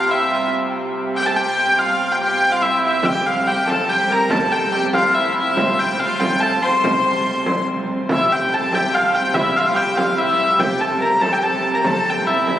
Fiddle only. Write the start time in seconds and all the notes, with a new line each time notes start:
Already playing: F4
0.09 E4
0.30 F4
1.15 G4
1.25 A4
1.36 G4
1.79 F4
2.22 G4
2.51 F4
2.61 E4
2.68 F4
2.75 E4
3.04 G4
3.46 G4
3.66 A4
3.87 G4
4.10 A#4
4.31 A4
4.37 A#4
4.43 A4
4.72 G4
4.94 F4
5.16 E4
5.36 E4
5.58 F4
5.99 F4
6.41 A4
6.63 C5
8.10 E4
8.30 G4
8.51 A4
8.72 G4
8.93 F4
9.36 E4
9.57 F4
9.66 F4
9.75 G4
9.96 F4
10.16 E4
10.58 G4
10.79 A4
10.99 A#4
11.22 A4
11.33 G4
11.43 A4
11.73 A#4
11.85 A4
12.25 E4